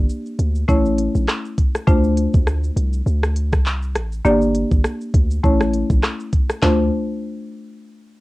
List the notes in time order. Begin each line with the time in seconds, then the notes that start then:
0.09 shaker
0.26 shaker
0.39 D2, closed hi-hat, shaker
0.55 shaker
0.68 A1 A3 C#4 E4 C#5, kick, shaker
0.86 shaker
0.98 closed hi-hat, shaker
1.15 A#1, shaker
1.28 cross-stick, clap, shaker
1.45 shaker
1.58 kick, closed hi-hat, shaker
1.75 cross-stick, shaker
1.87 D2 A3 D4 F4 C5, kick, shaker
2.04 shaker
2.17 closed hi-hat, shaker
2.34 D2, kick, shaker
2.47 cross-stick, shaker
2.64 shaker
2.76 C2, closed hi-hat, shaker
2.93 shaker
3.06 D2, shaker
3.23 cross-stick, shaker
3.36 closed hi-hat, shaker
3.52 C2, kick, cross-stick, shaker
3.66 clap, shaker
3.82 shaker
3.95 A1, cross-stick, closed hi-hat, shaker
4.12 shaker
4.25 G1 A#3 D4 G4 D5, shaker
4.42 shaker
4.55 closed hi-hat, shaker
4.71 G1, kick, shaker
4.84 cross-stick, shaker
5.01 shaker
5.14 D2, kick, closed hi-hat, shaker
5.31 shaker
5.43 A1 A3 C#4 E4 C#5, kick, shaker
5.61 cross-stick, shaker
5.74 closed hi-hat, shaker
5.90 A#1, kick, shaker
6.03 cross-stick, clap, shaker
6.20 shaker
6.33 kick, closed hi-hat, shaker
6.50 cross-stick, shaker
6.62 D2 A3 D4 F4 C5, snare, clap, floor tom